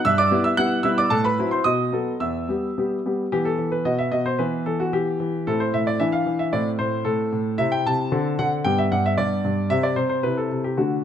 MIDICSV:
0, 0, Header, 1, 2, 480
1, 0, Start_track
1, 0, Key_signature, 1, "minor"
1, 0, Tempo, 531915
1, 53, Time_signature, 2, 2, 24, 8
1, 1494, Tempo, 548948
1, 3894, Tempo, 530504
1, 6784, Key_signature, 1, "major"
1, 8694, Tempo, 543478
1, 9874, End_track
2, 0, Start_track
2, 0, Title_t, "Grand piano"
2, 0, Program_c, 0, 0
2, 44, Note_on_c, 0, 88, 109
2, 46, Note_on_c, 0, 43, 70
2, 57, Note_on_c, 0, 76, 85
2, 164, Note_on_c, 0, 86, 101
2, 165, Note_off_c, 0, 76, 0
2, 167, Note_off_c, 0, 88, 0
2, 173, Note_on_c, 0, 74, 72
2, 279, Note_on_c, 0, 55, 54
2, 280, Note_off_c, 0, 43, 0
2, 286, Note_on_c, 0, 59, 58
2, 287, Note_on_c, 0, 64, 63
2, 381, Note_off_c, 0, 86, 0
2, 393, Note_off_c, 0, 74, 0
2, 399, Note_on_c, 0, 88, 94
2, 408, Note_on_c, 0, 76, 72
2, 455, Note_off_c, 0, 55, 0
2, 459, Note_off_c, 0, 59, 0
2, 459, Note_off_c, 0, 64, 0
2, 518, Note_on_c, 0, 90, 103
2, 520, Note_off_c, 0, 76, 0
2, 522, Note_on_c, 0, 55, 52
2, 523, Note_off_c, 0, 88, 0
2, 525, Note_on_c, 0, 78, 78
2, 527, Note_on_c, 0, 59, 56
2, 532, Note_on_c, 0, 64, 56
2, 697, Note_off_c, 0, 55, 0
2, 700, Note_off_c, 0, 59, 0
2, 703, Note_off_c, 0, 64, 0
2, 738, Note_off_c, 0, 90, 0
2, 750, Note_off_c, 0, 78, 0
2, 751, Note_on_c, 0, 88, 98
2, 758, Note_on_c, 0, 55, 54
2, 764, Note_on_c, 0, 64, 64
2, 764, Note_on_c, 0, 76, 71
2, 765, Note_on_c, 0, 59, 53
2, 877, Note_off_c, 0, 76, 0
2, 880, Note_off_c, 0, 88, 0
2, 884, Note_on_c, 0, 86, 92
2, 892, Note_on_c, 0, 74, 69
2, 935, Note_off_c, 0, 55, 0
2, 939, Note_off_c, 0, 59, 0
2, 939, Note_off_c, 0, 64, 0
2, 995, Note_on_c, 0, 81, 99
2, 1000, Note_on_c, 0, 45, 75
2, 1002, Note_off_c, 0, 74, 0
2, 1003, Note_on_c, 0, 69, 75
2, 1006, Note_off_c, 0, 86, 0
2, 1118, Note_off_c, 0, 69, 0
2, 1123, Note_off_c, 0, 81, 0
2, 1123, Note_on_c, 0, 83, 81
2, 1132, Note_on_c, 0, 71, 65
2, 1239, Note_off_c, 0, 45, 0
2, 1250, Note_on_c, 0, 54, 50
2, 1252, Note_on_c, 0, 60, 53
2, 1260, Note_on_c, 0, 64, 55
2, 1344, Note_off_c, 0, 83, 0
2, 1357, Note_off_c, 0, 71, 0
2, 1365, Note_on_c, 0, 84, 75
2, 1378, Note_on_c, 0, 72, 66
2, 1426, Note_off_c, 0, 54, 0
2, 1427, Note_off_c, 0, 60, 0
2, 1432, Note_off_c, 0, 64, 0
2, 1483, Note_on_c, 0, 87, 94
2, 1489, Note_off_c, 0, 72, 0
2, 1489, Note_on_c, 0, 47, 64
2, 1491, Note_off_c, 0, 84, 0
2, 1492, Note_on_c, 0, 75, 70
2, 1723, Note_off_c, 0, 47, 0
2, 1730, Note_on_c, 0, 59, 46
2, 1731, Note_on_c, 0, 54, 47
2, 1735, Note_on_c, 0, 69, 49
2, 1905, Note_off_c, 0, 54, 0
2, 1905, Note_off_c, 0, 59, 0
2, 1908, Note_off_c, 0, 69, 0
2, 1934, Note_off_c, 0, 87, 0
2, 1940, Note_off_c, 0, 75, 0
2, 1973, Note_on_c, 0, 40, 55
2, 1973, Note_on_c, 0, 88, 70
2, 1975, Note_on_c, 0, 76, 55
2, 2211, Note_off_c, 0, 40, 0
2, 2219, Note_on_c, 0, 55, 39
2, 2223, Note_on_c, 0, 59, 38
2, 2232, Note_on_c, 0, 67, 43
2, 2396, Note_off_c, 0, 55, 0
2, 2399, Note_off_c, 0, 59, 0
2, 2405, Note_off_c, 0, 67, 0
2, 2476, Note_on_c, 0, 55, 42
2, 2476, Note_on_c, 0, 59, 43
2, 2485, Note_on_c, 0, 67, 45
2, 2650, Note_off_c, 0, 55, 0
2, 2650, Note_off_c, 0, 59, 0
2, 2655, Note_off_c, 0, 67, 0
2, 2677, Note_off_c, 0, 76, 0
2, 2711, Note_off_c, 0, 88, 0
2, 2719, Note_on_c, 0, 55, 40
2, 2723, Note_on_c, 0, 59, 39
2, 2727, Note_on_c, 0, 67, 44
2, 2890, Note_off_c, 0, 55, 0
2, 2892, Note_off_c, 0, 59, 0
2, 2895, Note_off_c, 0, 67, 0
2, 2951, Note_on_c, 0, 67, 85
2, 2957, Note_on_c, 0, 59, 42
2, 2959, Note_on_c, 0, 52, 60
2, 3064, Note_on_c, 0, 69, 75
2, 3070, Note_off_c, 0, 67, 0
2, 3169, Note_off_c, 0, 52, 0
2, 3182, Note_on_c, 0, 52, 47
2, 3279, Note_off_c, 0, 69, 0
2, 3297, Note_on_c, 0, 71, 67
2, 3394, Note_off_c, 0, 59, 0
2, 3413, Note_on_c, 0, 47, 60
2, 3414, Note_off_c, 0, 52, 0
2, 3415, Note_on_c, 0, 75, 82
2, 3416, Note_on_c, 0, 59, 41
2, 3416, Note_on_c, 0, 66, 40
2, 3419, Note_off_c, 0, 71, 0
2, 3531, Note_on_c, 0, 76, 76
2, 3538, Note_off_c, 0, 75, 0
2, 3638, Note_off_c, 0, 47, 0
2, 3645, Note_on_c, 0, 75, 81
2, 3651, Note_on_c, 0, 47, 52
2, 3655, Note_off_c, 0, 76, 0
2, 3768, Note_on_c, 0, 72, 75
2, 3770, Note_off_c, 0, 75, 0
2, 3857, Note_off_c, 0, 59, 0
2, 3857, Note_off_c, 0, 66, 0
2, 3881, Note_on_c, 0, 71, 68
2, 3883, Note_off_c, 0, 47, 0
2, 3887, Note_on_c, 0, 52, 60
2, 3888, Note_on_c, 0, 64, 41
2, 3890, Note_off_c, 0, 72, 0
2, 3893, Note_on_c, 0, 59, 43
2, 4105, Note_off_c, 0, 71, 0
2, 4120, Note_off_c, 0, 52, 0
2, 4129, Note_on_c, 0, 69, 71
2, 4134, Note_on_c, 0, 52, 52
2, 4254, Note_off_c, 0, 69, 0
2, 4254, Note_on_c, 0, 66, 66
2, 4361, Note_off_c, 0, 52, 0
2, 4374, Note_on_c, 0, 52, 50
2, 4374, Note_on_c, 0, 67, 74
2, 4377, Note_off_c, 0, 66, 0
2, 4603, Note_off_c, 0, 52, 0
2, 4616, Note_on_c, 0, 52, 52
2, 4822, Note_off_c, 0, 64, 0
2, 4824, Note_off_c, 0, 59, 0
2, 4852, Note_off_c, 0, 52, 0
2, 4859, Note_off_c, 0, 67, 0
2, 4862, Note_on_c, 0, 69, 82
2, 4864, Note_on_c, 0, 45, 55
2, 4864, Note_on_c, 0, 60, 42
2, 4864, Note_on_c, 0, 64, 43
2, 4980, Note_on_c, 0, 72, 72
2, 4982, Note_off_c, 0, 69, 0
2, 5089, Note_off_c, 0, 45, 0
2, 5102, Note_off_c, 0, 72, 0
2, 5102, Note_on_c, 0, 45, 51
2, 5104, Note_on_c, 0, 76, 79
2, 5223, Note_off_c, 0, 76, 0
2, 5223, Note_on_c, 0, 74, 75
2, 5310, Note_off_c, 0, 60, 0
2, 5310, Note_off_c, 0, 64, 0
2, 5335, Note_off_c, 0, 45, 0
2, 5338, Note_on_c, 0, 76, 84
2, 5339, Note_on_c, 0, 62, 40
2, 5340, Note_on_c, 0, 52, 58
2, 5343, Note_off_c, 0, 74, 0
2, 5345, Note_on_c, 0, 64, 46
2, 5454, Note_on_c, 0, 77, 80
2, 5460, Note_off_c, 0, 76, 0
2, 5565, Note_off_c, 0, 52, 0
2, 5579, Note_on_c, 0, 52, 53
2, 5697, Note_on_c, 0, 76, 72
2, 5698, Note_off_c, 0, 77, 0
2, 5787, Note_off_c, 0, 62, 0
2, 5790, Note_off_c, 0, 64, 0
2, 5814, Note_off_c, 0, 52, 0
2, 5816, Note_on_c, 0, 60, 44
2, 5818, Note_on_c, 0, 64, 46
2, 5818, Note_on_c, 0, 74, 78
2, 5819, Note_on_c, 0, 45, 64
2, 5820, Note_off_c, 0, 76, 0
2, 5964, Note_off_c, 0, 74, 0
2, 6046, Note_off_c, 0, 45, 0
2, 6053, Note_on_c, 0, 72, 78
2, 6059, Note_on_c, 0, 45, 55
2, 6279, Note_off_c, 0, 45, 0
2, 6288, Note_on_c, 0, 69, 85
2, 6293, Note_on_c, 0, 45, 54
2, 6300, Note_off_c, 0, 72, 0
2, 6527, Note_off_c, 0, 45, 0
2, 6541, Note_on_c, 0, 45, 54
2, 6739, Note_off_c, 0, 69, 0
2, 6744, Note_off_c, 0, 60, 0
2, 6745, Note_off_c, 0, 64, 0
2, 6772, Note_on_c, 0, 76, 91
2, 6774, Note_off_c, 0, 45, 0
2, 6774, Note_on_c, 0, 64, 42
2, 6775, Note_on_c, 0, 48, 63
2, 6776, Note_on_c, 0, 60, 46
2, 6895, Note_on_c, 0, 79, 86
2, 6897, Note_off_c, 0, 76, 0
2, 7011, Note_off_c, 0, 48, 0
2, 7019, Note_off_c, 0, 79, 0
2, 7029, Note_on_c, 0, 48, 54
2, 7029, Note_on_c, 0, 81, 93
2, 7223, Note_off_c, 0, 64, 0
2, 7224, Note_off_c, 0, 60, 0
2, 7258, Note_off_c, 0, 48, 0
2, 7259, Note_on_c, 0, 50, 70
2, 7261, Note_on_c, 0, 69, 46
2, 7262, Note_on_c, 0, 60, 47
2, 7491, Note_off_c, 0, 50, 0
2, 7503, Note_off_c, 0, 81, 0
2, 7503, Note_on_c, 0, 78, 88
2, 7504, Note_on_c, 0, 50, 59
2, 7644, Note_off_c, 0, 78, 0
2, 7704, Note_off_c, 0, 60, 0
2, 7704, Note_off_c, 0, 69, 0
2, 7733, Note_off_c, 0, 50, 0
2, 7735, Note_on_c, 0, 79, 95
2, 7738, Note_on_c, 0, 67, 46
2, 7741, Note_on_c, 0, 43, 65
2, 7743, Note_on_c, 0, 59, 48
2, 7855, Note_off_c, 0, 79, 0
2, 7861, Note_on_c, 0, 76, 80
2, 7969, Note_off_c, 0, 43, 0
2, 7978, Note_off_c, 0, 76, 0
2, 7981, Note_on_c, 0, 78, 80
2, 7982, Note_on_c, 0, 43, 58
2, 8098, Note_off_c, 0, 78, 0
2, 8108, Note_on_c, 0, 76, 86
2, 8206, Note_off_c, 0, 43, 0
2, 8215, Note_on_c, 0, 74, 87
2, 8219, Note_on_c, 0, 43, 58
2, 8222, Note_off_c, 0, 76, 0
2, 8445, Note_off_c, 0, 43, 0
2, 8458, Note_on_c, 0, 43, 57
2, 8657, Note_off_c, 0, 67, 0
2, 8660, Note_off_c, 0, 59, 0
2, 8688, Note_off_c, 0, 43, 0
2, 8690, Note_on_c, 0, 76, 91
2, 8693, Note_off_c, 0, 74, 0
2, 8694, Note_on_c, 0, 48, 60
2, 8695, Note_on_c, 0, 60, 42
2, 8696, Note_on_c, 0, 67, 39
2, 8807, Note_on_c, 0, 74, 78
2, 8809, Note_off_c, 0, 76, 0
2, 8906, Note_off_c, 0, 48, 0
2, 8920, Note_on_c, 0, 48, 51
2, 8921, Note_on_c, 0, 72, 75
2, 8927, Note_off_c, 0, 74, 0
2, 9025, Note_off_c, 0, 72, 0
2, 9038, Note_on_c, 0, 72, 70
2, 9136, Note_off_c, 0, 60, 0
2, 9136, Note_off_c, 0, 67, 0
2, 9153, Note_off_c, 0, 48, 0
2, 9159, Note_on_c, 0, 71, 75
2, 9162, Note_on_c, 0, 64, 38
2, 9163, Note_off_c, 0, 72, 0
2, 9166, Note_on_c, 0, 48, 53
2, 9166, Note_on_c, 0, 60, 38
2, 9284, Note_off_c, 0, 71, 0
2, 9284, Note_on_c, 0, 69, 62
2, 9396, Note_off_c, 0, 48, 0
2, 9410, Note_on_c, 0, 48, 48
2, 9503, Note_off_c, 0, 69, 0
2, 9522, Note_on_c, 0, 67, 60
2, 9614, Note_off_c, 0, 64, 0
2, 9616, Note_off_c, 0, 60, 0
2, 9635, Note_on_c, 0, 57, 33
2, 9638, Note_on_c, 0, 66, 60
2, 9641, Note_on_c, 0, 50, 52
2, 9644, Note_off_c, 0, 48, 0
2, 9645, Note_on_c, 0, 62, 34
2, 9647, Note_off_c, 0, 67, 0
2, 9868, Note_off_c, 0, 50, 0
2, 9874, Note_off_c, 0, 57, 0
2, 9874, Note_off_c, 0, 62, 0
2, 9874, Note_off_c, 0, 66, 0
2, 9874, End_track
0, 0, End_of_file